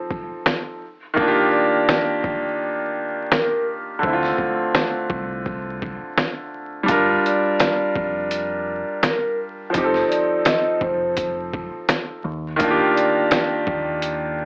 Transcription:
Already playing: F3 C4 D#4 A4
0.11 kick
0.46 snare
1.14 D#3 A#3, kick
1.19 D4 F4
1.28 G4
1.52 D5
1.89 snare
2.24 kick
3.32 A#4, snare
3.99 D3 A3
4.03 D2 C4 E4, kick
4.13 F4
4.23 snare
4.38 kick
4.75 snare
5.10 C2, kick
5.46 kick
5.82 kick
6.17 snare
6.83 G3 D4
6.88 G1 F4 A#4, kick, closed hi-hat
7.26 D5, closed hi-hat
7.60 snare, closed hi-hat
7.95 F1, kick
8.31 closed hi-hat
9.03 A#4, snare, closed hi-hat
9.70 F3 C4
9.74 F1 D#4 G4 C5, kick, closed hi-hat
9.84 A4
9.94 snare
10.09 D5, closed hi-hat
10.45 D#5, snare, closed hi-hat
10.81 F1 C5, kick
11.17 kick, closed hi-hat
11.53 kick
11.89 snare, closed hi-hat
12.25 D#2
12.56 D#3 A#3, closed hi-hat
12.60 D4 F4, kick
12.71 G4
12.95 D5, closed hi-hat
13.31 snare, closed hi-hat
13.67 D#2, kick
14.02 closed hi-hat

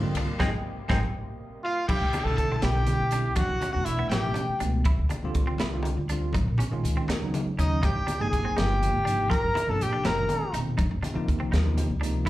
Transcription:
Already playing: C3 D3 G3 A#3 C4 F4 G4 D#5
0.03 muted upright bass stroke
0.14 C2 D4, ride
0.39 G#1 G#3 C4 D#4 D#5 G5 G#5, kick, snare, high conga
0.89 G#1 G#3 C4 D#4 D#5 G5 G#5, kick, snare, high conga
1.64 F4 F5
1.88 C2 E4 G4 G5, kick, crash, high conga
2.01 C2
2.12 D4, muted upright bass stroke, closed hi-hat, low conga
2.24 B1 D3 G3 C4 E4 A4 A5, low conga
2.37 B1 A4 A5, kick, closed hi-hat
2.52 C4
2.56 A4 A5
2.62 B1 E4 G4 G5, snare, closed hi-hat, high conga
2.74 D3 G3 C4 E4, low conga
2.87 closed hi-hat, low conga
3.00 B1
3.11 D3 G3 C4 D4 E4, closed hi-hat
3.24 low conga
3.36 E2 D4 F#4 F#5, kick, closed hi-hat, high conga
3.49 E3
3.61 C#4, closed hi-hat, low conga
3.73 E2 B2 E3 A3 D4 F#4 F#5, low conga
3.85 B1 E4 E5, closed hi-hat
3.99 B3
4.09 A1 E4 G4 G5, snare, closed hi-hat, high conga
4.23 B2 E3 A3 C#4, low conga
4.34 closed hi-hat, low conga
4.49 muted upright bass stroke
4.60 C#2 B2 E3 A3 B3 D4, closed hi-hat
4.72 low conga
4.85 D2 E4, kick, closed hi-hat, high conga
4.99 D2
5.09 D4, muted upright bass stroke, closed hi-hat, low conga
5.21 C2 D3 G3 C4 F4, low conga
5.34 C2, kick, closed hi-hat
5.47 C4
5.58 C2 E4, snare, closed hi-hat, high conga
5.71 D3 G3 C4 F4, low conga
5.83 closed hi-hat, low conga
5.97 D2
6.09 D3 G3 C4 D4 F4, closed hi-hat
6.21 low conga
6.33 A#1 D#4, kick, closed hi-hat, high conga
6.47 A#2
6.58 C#4, closed hi-hat, low conga
6.71 A#1 D#3 G#3 C#4 F4
6.84 C#2, closed hi-hat, low conga
6.97 C4
7.08 D#2 D#4, snare, closed hi-hat, high conga, low conga
7.21 C#3 F#3 B3 D#4, low conga
7.34 closed hi-hat, low conga
7.46 muted upright bass stroke
7.58 D#2 C#3 F#3 B3 C#4 D#4 D#5, closed hi-hat
7.83 G#1 D#4 G4 G5, kick, closed hi-hat, high conga
7.96 G#1
8.07 D4, muted upright bass stroke, closed hi-hat, low conga
8.19 G1 C3 F3 A#3 D#4 G#4 G#5, low conga
8.31 G1 G#4 G#5, kick, closed hi-hat
8.45 C4
8.57 G1 D#4 G4 G5, snare, closed hi-hat, high conga
8.69 C3 F3 A#3 F4, low conga
8.82 closed hi-hat, low conga
8.95 G#1
9.05 C3 F3 A#3 D4 D#4, closed hi-hat
9.19 low conga
9.30 G1 F4 A#4 A#5, kick, closed hi-hat, high conga
9.44 G2
9.55 E4, closed hi-hat, low conga
9.67 G1 C3 F3 A#3 D4 A4 A5, low conga
9.81 A#1 G4 G5, closed hi-hat
9.93 D4
10.04 F#1 E4 A#4 A#5, snare, closed hi-hat, high conga
10.16 A#2 D#3 G#3 C#4, low conga
10.29 closed hi-hat, low conga
10.42 muted upright bass stroke
10.53 E1 A#2 D#3 G#3 C4 D#4, closed hi-hat
10.67 low conga
10.78 F1 D#4, kick, closed hi-hat, high conga
10.91 F1
11.03 D4, muted upright bass stroke, closed hi-hat, low conga
11.14 D#2 C3 F3 A#3 D#4, low conga
11.28 D#2, kick, closed hi-hat
11.40 C4
11.52 D#2 D#4, snare, closed hi-hat, high conga
11.65 C3 F3 A#3 D#4, low conga
11.77 closed hi-hat, low conga
11.90 C#2
12.01 C3 F3 A#3 D4 D#4, closed hi-hat
12.14 low conga
12.25 E4, high conga, low conga

